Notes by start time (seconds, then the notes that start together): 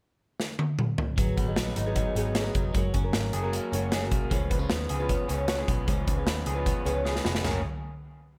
0.40 snare
0.59 high tom
0.79 mid tom
0.98 floor tom
1.17 G#1 F#3 B3 D#4 G#4, kick, closed hi-hat
1.37 G#1 B3, kick, closed hi-hat
1.47 F#3 B3 D#4 G#4
1.56 A#1 F#3, snare, closed hi-hat
1.76 G#1 D#4, closed hi-hat
1.86 G#2 D#3 F#3 B3 D#4 G#4
1.96 F#3, kick, closed hi-hat
2.15 G#1 G#2 D#3 F#3 B3 D#4 G#4, closed hi-hat
2.35 C#4, snare, closed hi-hat
2.44 F#3 B3 D#4 G#4
2.55 F1 F#3, kick, closed hi-hat
2.74 F#1 F#3 G#3 C#4 F#4 A#4, kick, closed hi-hat
2.94 F#1 C#4, kick, closed hi-hat
3.04 C#4 F#4 A#4
3.13 G#1 A#3, snare, closed hi-hat
3.33 F#1 G#4, closed hi-hat
3.43 F#3 G#3 C#4 F#4 A#4
3.53 A#3, closed hi-hat
3.72 F#1 F#3 G#3 C#4 F#4 A#4, closed hi-hat
3.92 G#4, snare, closed hi-hat
4.02 C#4 F#4 A#4
4.11 B1 A#3, kick, closed hi-hat
4.30 C#2 F3 G#3 C#4 F4 B4, kick, closed hi-hat
4.50 C#2 B3, kick, closed hi-hat
4.59 G#3 C#4 F4 B4
4.70 D#2 B3, snare, closed hi-hat
4.89 C#2 G#4, closed hi-hat
4.99 C#3 F3 G#3 C#4 F4 B4
5.09 B3, kick, closed hi-hat
5.28 C#2 C#3 F3 G#3 C#4 F4 B4, closed hi-hat
5.48 F#4, snare, closed hi-hat
5.58 G#3 C#4 F4 G#4 B4
5.68 B1 B3, kick, closed hi-hat
5.87 C#2 F3 G#3 C#4 F4 B4, kick, closed hi-hat
6.07 C#2 C#4, kick, closed hi-hat
6.16 G#3 C#4 F4 B4
6.27 D#2 B3, snare, closed hi-hat
6.46 C#2 G#4, closed hi-hat
6.55 C#3 F3 G#3 C#4 F4 B4
6.66 B3, kick, closed hi-hat
6.85 C#2 C#3 F3 G#3 C#4 F4 B4, closed hi-hat
7.05 G#4, snare
7.14 G#3 C#4 F4 B4, snare
7.25 F1 B3, snare
7.35 snare
7.43 F#1 F#3 G#3 A#3 C#4 F#4 G#4 A#4, snare, floor tom, crash